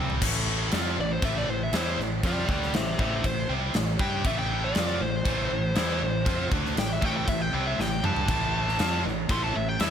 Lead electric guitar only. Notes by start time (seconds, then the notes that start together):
1.01 D5
1.13 C5
1.25 E5
1.38 D5
1.49 C5
1.63 E5
1.76 C5
2.26 D5 G5
2.50 D5 G5
2.76 C5 E5
3.01 C5 E5
3.25 C5
4.01 G5
4.27 E5
4.39 G5
4.64 D5
5.02 C5
6.79 G5
6.93 E5
7.05 G5
7.16 G5
7.29 E5
7.41 G5
7.55 G5
7.67 E5
7.80 G5
8.05 A5
9.31 C6
9.44 A5
9.55 E5
9.69 G5
9.80 E5